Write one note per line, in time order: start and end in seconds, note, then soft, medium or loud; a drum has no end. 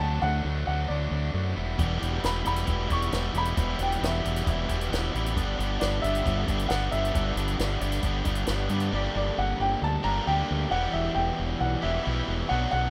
0.00 0.19 D2 medium
0.00 0.20 D3 medium
0.00 0.21 F#3 medium
0.00 0.22 A3 medium
0.00 0.23 D4 medium
0.00 0.22 A5 medium
0.22 0.41 D2 medium
0.22 0.43 D3 medium
0.22 0.43 F#3 medium
0.22 0.44 A3 medium
0.22 0.45 D4 medium
0.22 0.66 F#5 medium
0.44 0.63 D2 medium
0.44 0.66 D3 medium
0.44 0.67 F#3 medium
0.44 0.67 A3 medium
0.44 0.68 D4 medium
0.67 0.86 D2 medium
0.67 0.88 D3 medium
0.67 0.89 F#3 medium
0.67 0.89 A3 loud
0.67 0.90 D4 loud
0.67 0.90 F#5 medium
0.88 1.08 D2 medium
0.88 1.09 D3 medium
0.88 1.09 F#3 medium
0.88 1.10 A3 medium
0.88 1.11 D4 medium
0.88 1.52 D5 medium
1.10 1.30 D2 medium
1.10 1.31 D3 medium
1.10 1.31 F#3 medium
1.10 1.32 A3 medium
1.10 1.33 D4 loud
1.32 1.53 F#2 medium
1.32 1.54 D3 medium
1.32 1.54 F#3 medium
1.32 1.55 A3 medium
1.32 1.56 D4 medium
1.55 1.76 E1 medium
1.55 1.76 E3 medium
1.55 1.76 G3 medium
1.55 1.76 B3 medium
1.55 1.77 E4 medium
1.77 1.98 E1 medium
1.77 1.99 E2 medium
1.77 1.98 B2 medium
1.77 2.00 E3 loud
1.77 2.00 G3 medium
1.77 1.99 B3 medium
1.77 2.00 E4 medium
1.77 2.01 G4 loud
1.77 kick loud
1.77 closed hi-hat medium
1.99 2.20 E1 medium
1.99 2.23 E2 medium
1.99 2.22 B2 medium
1.99 2.23 E3 medium
1.99 2.24 G3 medium
1.99 2.21 B3 medium
1.99 2.24 E4 medium
1.99 2.24 G4 medium
1.99 closed hi-hat medium
2.21 2.42 E1 medium
2.21 2.44 E2 medium
2.21 2.44 B2 medium
2.21 2.45 E3 medium
2.21 2.44 G3 medium
2.21 2.44 B3 medium
2.21 2.45 E4 medium
2.21 2.46 G4 medium
2.21 2.45 B5 medium
2.21 snare medium
2.21 closed hi-hat soft
2.44 2.65 E1 medium
2.44 2.67 E2 medium
2.44 2.67 B2 medium
2.44 2.68 E3 medium
2.44 2.68 G3 medium
2.44 2.66 B3 medium
2.44 2.69 E4 medium
2.44 2.69 G4 medium
2.44 2.92 B5 medium
2.44 closed hi-hat soft
2.56 snare soft
2.56 closed hi-hat medium
2.67 2.87 E1 medium
2.67 2.87 E2 medium
2.67 2.88 B2 medium
2.67 2.89 E3 medium
2.67 2.89 G3 medium
2.67 2.89 B3 medium
2.67 2.90 E4 medium
2.67 2.89 G4 medium
2.67 kick loud
2.67 closed hi-hat medium
2.88 3.09 E1 medium
2.88 3.10 E2 medium
2.88 3.11 B2 medium
2.88 3.13 E3 medium
2.88 3.13 G3 medium
2.88 3.12 B3 medium
2.88 3.14 E4 medium
2.88 3.14 G4 medium
2.88 3.37 C#6 loud
2.88 kick medium
2.88 closed hi-hat medium
3.02 closed hi-hat medium
3.12 3.32 E1 medium
3.12 3.32 E2 medium
3.12 3.33 B2 medium
3.12 3.34 E3 medium
3.12 3.34 G3 medium
3.12 3.35 B3 medium
3.12 3.35 E4 medium
3.12 3.35 G4 medium
3.12 snare medium
3.12 closed hi-hat medium
3.33 3.53 E1 medium
3.33 3.55 E2 medium
3.33 3.55 B2 medium
3.33 3.56 E3 medium
3.33 3.57 G3 medium
3.33 3.57 B3 medium
3.33 3.57 E4 medium
3.33 3.58 G4 medium
3.33 closed hi-hat medium
3.37 3.82 B5 medium
3.45 closed hi-hat medium
3.56 3.76 E1 medium
3.56 3.76 E2 medium
3.56 3.77 B2 medium
3.56 3.78 E3 loud
3.56 3.79 G3 loud
3.56 3.78 B3 medium
3.56 3.79 E4 loud
3.56 3.79 G4 loud
3.56 kick loud
3.56 closed hi-hat medium
3.78 3.98 E1 medium
3.78 4.01 E2 medium
3.78 4.00 B2 medium
3.78 4.02 E3 medium
3.78 4.02 G3 medium
3.78 4.00 B3 medium
3.78 4.03 E4 medium
3.78 4.02 G4 medium
3.78 closed hi-hat medium
3.83 4.04 G5 medium
3.92 closed hi-hat medium
4.01 4.21 E1 medium
4.01 4.22 E2 medium
4.01 4.22 B2 medium
4.01 4.23 E3 medium
4.01 4.23 G3 medium
4.01 4.23 B3 medium
4.01 4.24 E4 medium
4.01 4.24 G4 medium
4.01 snare medium
4.01 closed hi-hat medium
4.05 4.48 E5 medium
4.23 4.44 E1 medium
4.23 4.45 E2 medium
4.23 4.46 B2 medium
4.23 4.47 E3 medium
4.23 4.47 G3 medium
4.23 4.45 B3 loud
4.23 4.47 E4 medium
4.23 4.48 G4 medium
4.23 closed hi-hat medium
4.36 snare soft
4.36 closed hi-hat medium
4.45 4.66 E1 medium
4.45 4.66 E2 medium
4.45 4.67 B2 medium
4.45 4.68 E3 medium
4.45 4.68 G3 medium
4.45 4.67 B3 medium
4.45 4.68 E4 medium
4.45 4.69 G4 medium
4.45 kick medium
4.45 closed hi-hat medium
4.50 5.11 E5 medium
4.67 4.88 E1 medium
4.67 4.90 E2 medium
4.67 4.90 B2 medium
4.67 4.92 E3 medium
4.67 4.92 G3 medium
4.67 4.89 B3 medium
4.67 4.92 E4 medium
4.67 4.92 G4 medium
4.67 kick medium
4.67 closed hi-hat medium
4.81 closed hi-hat medium
4.89 5.11 E1 medium
4.89 5.12 E2 medium
4.89 5.12 B2 medium
4.89 5.13 E3 medium
4.89 5.14 G3 medium
4.89 5.12 B3 medium
4.89 5.14 E4 medium
4.89 5.14 G4 medium
4.89 closed hi-hat medium
4.94 snare medium
5.12 5.37 A1 medium
5.12 5.35 E2 medium
5.12 5.35 B2 medium
5.12 5.36 E3 medium
5.12 5.36 G3 medium
5.12 5.35 B3 medium
5.12 5.36 E4 medium
5.12 5.37 G4 medium
5.12 closed hi-hat soft
5.26 closed hi-hat medium
5.35 5.56 G1 medium
5.35 5.57 G2 loud
5.35 5.57 D3 loud
5.35 5.58 G3 medium
5.35 5.59 B3 medium
5.35 5.59 D4 loud
5.35 5.59 G4 loud
5.35 kick loud
5.35 closed hi-hat medium
5.57 5.78 G1 medium
5.57 5.79 G2 medium
5.57 5.80 D3 medium
5.57 5.80 G3 medium
5.57 5.81 B3 medium
5.57 5.81 D4 medium
5.57 5.81 G4 medium
5.57 closed hi-hat medium
5.80 6.00 G1 medium
5.80 6.01 G2 medium
5.80 6.01 D3 medium
5.80 6.02 G3 medium
5.80 6.03 B3 medium
5.80 6.03 D4 medium
5.80 6.03 G4 medium
5.80 6.03 D5 medium
5.80 snare medium
5.80 closed hi-hat soft
6.02 6.22 G1 medium
6.02 6.24 G2 medium
6.02 6.24 D3 medium
6.02 6.25 G3 medium
6.02 6.24 B3 medium
6.02 6.25 D4 medium
6.02 6.25 G4 medium
6.02 6.72 E5 medium
6.02 closed hi-hat medium
6.15 closed hi-hat medium
6.24 6.45 G1 medium
6.24 6.48 G2 medium
6.24 6.48 D3 medium
6.24 6.49 G3 medium
6.24 6.49 B3 medium
6.24 6.49 D4 medium
6.24 6.50 G4 medium
6.24 kick medium
6.24 closed hi-hat soft
6.48 6.67 G1 medium
6.48 6.70 G2 medium
6.48 6.70 D3 medium
6.48 6.71 G3 medium
6.48 6.71 B3 medium
6.48 6.72 D4 medium
6.48 6.72 G4 medium
6.48 kick medium
6.48 closed hi-hat medium
6.59 closed hi-hat soft
6.69 6.89 G1 medium
6.69 6.93 G2 medium
6.69 6.92 D3 medium
6.69 6.94 G3 medium
6.69 6.93 B3 medium
6.69 6.94 D4 medium
6.69 6.95 G4 medium
6.69 6.93 F#5 medium
6.69 snare medium
6.69 closed hi-hat medium
6.91 7.11 G1 medium
6.91 7.14 G2 medium
6.91 7.14 D3 medium
6.91 7.14 G3 medium
6.91 7.15 B3 medium
6.91 7.15 D4 medium
6.91 7.15 G4 medium
6.91 8.44 E5 medium
6.91 closed hi-hat soft
7.05 closed hi-hat medium
7.15 7.34 G1 medium
7.15 7.36 G2 loud
7.15 7.36 D3 medium
7.15 7.37 G3 loud
7.15 7.37 B3 medium
7.15 7.38 D4 loud
7.15 7.38 G4 loud
7.15 kick loud
7.15 closed hi-hat medium
7.36 7.55 G1 medium
7.36 7.58 G2 medium
7.36 7.58 D3 medium
7.36 7.59 G3 medium
7.36 7.60 B3 medium
7.36 7.59 D4 medium
7.36 7.60 G4 medium
7.36 closed hi-hat medium
7.48 closed hi-hat medium
7.59 7.78 G1 medium
7.59 7.78 G2 medium
7.59 7.79 D3 medium
7.59 7.79 G3 medium
7.59 7.80 B3 medium
7.59 7.80 D4 medium
7.59 7.80 G4 medium
7.59 snare medium
7.59 closed hi-hat medium
7.79 8.00 G1 medium
7.79 8.02 G2 medium
7.79 8.02 D3 medium
7.79 8.02 G3 medium
7.79 8.04 B3 medium
7.79 8.03 D4 medium
7.79 8.04 G4 medium
7.79 closed hi-hat medium
7.92 snare soft
7.92 closed hi-hat medium
8.03 8.22 G1 medium
8.03 8.23 G2 medium
8.03 8.25 D3 medium
8.03 8.24 G3 medium
8.03 8.25 B3 medium
8.03 8.25 D4 medium
8.03 8.25 G4 medium
8.03 kick medium
8.03 closed hi-hat medium
8.24 8.45 G1 medium
8.24 8.44 G2 medium
8.24 8.45 D3 medium
8.24 8.46 G3 medium
8.24 8.46 B3 medium
8.24 8.46 D4 medium
8.24 8.46 G4 loud
8.24 kick medium
8.24 closed hi-hat medium
8.35 closed hi-hat medium
8.46 8.67 G1 medium
8.46 8.68 G2 medium
8.46 8.69 D3 medium
8.46 8.69 G3 medium
8.46 8.69 B3 medium
8.46 8.69 D4 medium
8.46 8.69 G4 medium
8.46 snare loud
8.46 closed hi-hat medium
8.69 8.90 G2 medium
8.69 8.89 G2 medium
8.69 8.90 D3 medium
8.69 8.91 G3 medium
8.69 8.92 B3 medium
8.69 8.91 D4 medium
8.69 8.92 G4 medium
8.69 closed hi-hat soft
8.80 closed hi-hat medium
8.91 9.07 G1 medium
8.91 10.02 G2 medium
8.91 10.03 D3 medium
8.91 10.03 G3 medium
8.91 10.03 A#3 medium
8.91 10.03 D4 loud
8.91 10.02 G4 loud
8.91 9.15 D5 medium
9.15 9.30 G1 medium
9.15 9.39 D5 medium
9.38 9.52 G1 medium
9.38 9.61 F#5 medium
9.60 9.74 G1 medium
9.60 9.84 G5 medium
9.82 9.96 D2 medium
9.82 10.06 A5 medium
10.03 10.19 G1 medium
10.03 10.25 G2 medium
10.03 10.25 D3 medium
10.03 10.26 G3 medium
10.03 10.26 A#3 medium
10.03 10.25 D4 medium
10.03 10.25 G4 medium
10.03 10.27 A#5 medium
10.26 10.42 D2 medium
10.26 10.69 G2 medium
10.26 10.70 D3 medium
10.26 10.70 G3 medium
10.26 10.71 A#3 medium
10.26 10.71 D4 medium
10.26 10.71 G4 medium
10.26 10.73 G5 medium
10.51 10.65 D2 medium
10.70 10.86 E1 medium
10.70 11.81 E2 medium
10.70 11.81 B2 medium
10.70 11.82 E3 medium
10.70 11.82 G3 medium
10.70 11.82 B3 medium
10.70 11.82 E4 loud
10.70 11.81 G4 medium
10.70 10.92 F#5 medium
10.93 11.08 E1 medium
10.93 11.17 E5 medium
11.15 11.30 E1 medium
11.15 11.62 G5 medium
11.39 11.53 E1 medium
11.61 11.75 B1 medium
11.61 11.84 F#5 medium
11.82 11.98 E1 medium
11.82 12.02 E2 medium
11.82 12.03 B2 medium
11.82 12.03 E3 medium
11.82 12.04 G3 medium
11.82 12.04 B3 medium
11.82 12.04 E4 medium
11.82 12.04 G4 medium
11.82 12.25 E5 medium
12.03 12.21 B1 medium
12.03 12.48 E2 medium
12.03 12.47 B2 medium
12.03 12.48 E3 medium
12.03 12.49 G3 medium
12.03 12.48 B3 medium
12.03 12.49 E4 medium
12.03 12.49 G4 medium
12.28 12.42 E1 medium
12.48 12.65 B1 medium
12.48 12.90 B2 medium
12.48 12.90 F#3 loud
12.48 12.90 B3 loud
12.48 12.90 D4 loud
12.48 12.90 F#4 medium
12.48 12.70 F#5 medium
12.71 12.87 B1 medium
12.71 12.90 F#5 medium